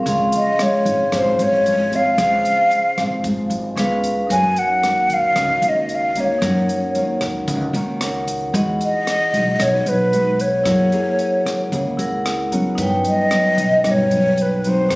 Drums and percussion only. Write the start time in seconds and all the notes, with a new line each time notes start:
0.06 kick, closed hi-hat
0.32 closed hi-hat
0.59 cross-stick, closed hi-hat
0.86 kick, closed hi-hat
1.12 kick, cross-stick, closed hi-hat
1.39 closed hi-hat
1.66 closed hi-hat
1.92 kick, closed hi-hat
2.18 kick, cross-stick, closed hi-hat
2.45 closed hi-hat
2.71 closed hi-hat
2.98 kick, cross-stick, closed hi-hat
3.24 kick, closed hi-hat
3.51 closed hi-hat
3.77 cross-stick, closed hi-hat
4.04 kick, closed hi-hat
4.30 kick, closed hi-hat
4.56 closed hi-hat
4.83 cross-stick, closed hi-hat
5.09 kick, closed hi-hat
5.36 kick, cross-stick, closed hi-hat
5.62 closed hi-hat
5.89 closed hi-hat
6.15 kick, closed hi-hat
6.42 kick, cross-stick, closed hi-hat
6.69 closed hi-hat
6.95 closed hi-hat
7.21 kick, cross-stick, closed hi-hat
7.48 kick, closed hi-hat
7.74 closed hi-hat
8.01 cross-stick, closed hi-hat
8.27 kick, closed hi-hat
8.54 kick, closed hi-hat
8.81 closed hi-hat
9.07 cross-stick, closed hi-hat
9.33 kick, closed hi-hat
9.60 kick, cross-stick, closed hi-hat
9.86 closed hi-hat
10.13 closed hi-hat
10.39 kick, closed hi-hat
10.66 kick, cross-stick, closed hi-hat
10.92 closed hi-hat
11.19 closed hi-hat
11.46 kick, cross-stick, closed hi-hat
11.72 kick, closed hi-hat
11.99 closed hi-hat
12.26 cross-stick, closed hi-hat
12.52 kick, closed hi-hat
12.78 kick, closed hi-hat
13.05 closed hi-hat
13.31 cross-stick, closed hi-hat
13.58 kick, closed hi-hat
13.84 kick, cross-stick, closed hi-hat
14.11 closed hi-hat
14.38 closed hi-hat
14.64 kick, closed hi-hat
14.90 kick, cross-stick, closed hi-hat